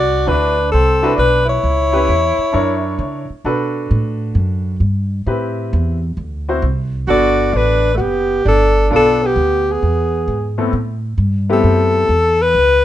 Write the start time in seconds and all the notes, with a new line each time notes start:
Already playing: C2 F#4 D5
0.27 D2 D4 E4 F#4 B4
0.72 C2 C4 A4
1.03 D4 E4 F#4 B4
1.15 B1 D4 B4
1.45 E4 C#5
1.63 C#2
1.93 C#4 E4 G4 B4
2.09 E2
2.38 muted upright bass stroke
2.53 F#2 D4 E4 A#4 C#5
2.99 C#3
3.30 muted upright bass stroke
3.44 B2 D4 F#4 A4 B4
3.91 A2
4.35 F#2
4.80 G2
5.26 A2 C4 E4 G4 B4
5.73 E2
6.17 D2
6.48 C4 E4 F#4 C5
6.62 C2
7.07 G1 B3 D4 F#4 A4 D5
7.53 A1 D4 B4
7.94 A3 F#4
7.99 F#1 B3 G4
8.45 G1 D4 A4
8.90 B1 B3 D4 F4 A4
8.96 A4
9.23 B3 G4
9.36 D2
9.67 B3
9.72 G#4
9.83 E2
10.28 G#2
10.58 A2 B3 C4 E4 A4
10.73 A2
11.18 G2
11.49 A3 B3 C4 E4 G4 A4
11.64 F#2
12.09 E2
12.42 B4
12.55 C#2